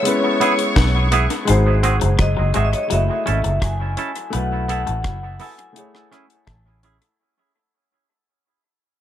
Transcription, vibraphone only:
0.00 0.73 C#5 medium
1.49 2.22 C5 medium
2.20 2.52 D#5 medium
2.55 2.64 E5 medium
2.65 2.73 D#5 medium
2.74 2.82 C#5 medium
2.83 2.91 D#5 medium
2.92 3.65 E5 loud
3.63 4.36 G#5 loud
4.34 4.67 F#5 medium
4.70 5.43 F#5 loud
5.42 6.80 G#5 medium

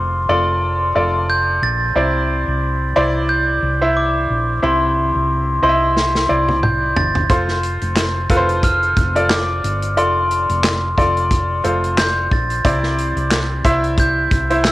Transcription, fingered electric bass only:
0.00 0.25 F1 medium
0.29 0.92 F1 medium
0.96 1.58 F1 medium
1.62 1.93 A#1 medium
1.96 2.44 C2 medium
2.48 2.92 C2 medium
2.96 3.59 C2 medium
3.62 4.25 C2 medium
4.30 4.61 A#1 medium
4.63 5.11 C2 medium
5.15 5.60 C2 medium
5.63 6.26 C2 medium
6.30 6.93 C2 medium
6.97 7.28 G1 medium
7.30 7.78 F1 medium
7.82 8.27 F1 medium
8.30 8.93 F1 medium
8.97 9.60 F1 medium
9.64 9.97 G1 medium
9.97 10.46 F1 medium
10.49 10.94 F1 medium
10.98 11.60 F1 medium
11.64 12.27 F1 medium
12.31 12.62 A#1 medium
12.65 13.13 C2 medium
13.16 13.61 C2 medium
13.65 14.28 C2 medium
14.31 14.72 C2 medium

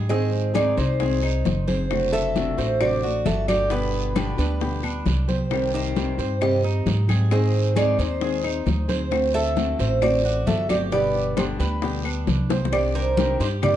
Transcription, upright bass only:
0.00 0.71 G#2 medium
0.77 1.41 C2 medium
1.45 2.52 F#1 medium
2.58 3.22 A1 medium
3.25 4.32 G1 medium
4.38 5.02 D2 medium
5.06 6.12 C2 medium
6.18 6.82 G2 medium
6.86 7.93 G#2 medium
7.98 8.62 D#2 medium
8.66 9.73 D2 medium
9.79 10.43 A1 medium
10.47 11.53 G1 medium
11.59 12.23 D2 medium
12.27 13.34 C2 medium
13.40 13.76 G2 medium

